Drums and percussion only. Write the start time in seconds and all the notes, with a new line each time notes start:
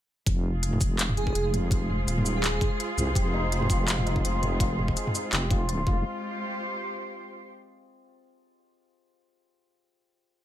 0.26 kick, closed hi-hat
0.63 closed hi-hat
0.73 mid tom
0.81 kick, closed hi-hat, shaker
0.99 clap, closed hi-hat, shaker
1.09 mid tom
1.17 closed hi-hat
1.27 kick
1.35 closed hi-hat
1.54 closed hi-hat, mid tom
1.71 kick, closed hi-hat
1.90 mid tom
2.08 closed hi-hat, shaker
2.18 mid tom
2.26 closed hi-hat, shaker
2.44 clap, closed hi-hat
2.61 kick, closed hi-hat, mid tom
2.80 closed hi-hat
2.98 closed hi-hat, mid tom, shaker
3.15 kick, closed hi-hat
3.52 closed hi-hat
3.62 mid tom
3.70 kick, closed hi-hat, shaker
3.88 clap, closed hi-hat, shaker
3.99 mid tom
4.07 closed hi-hat
4.16 kick
4.25 closed hi-hat
4.43 closed hi-hat, mid tom
4.60 kick, closed hi-hat
4.79 mid tom
4.88 kick
4.97 closed hi-hat, shaker
5.07 mid tom
5.15 closed hi-hat, shaker
5.33 clap, closed hi-hat
5.51 kick, closed hi-hat, mid tom
5.69 closed hi-hat
5.87 kick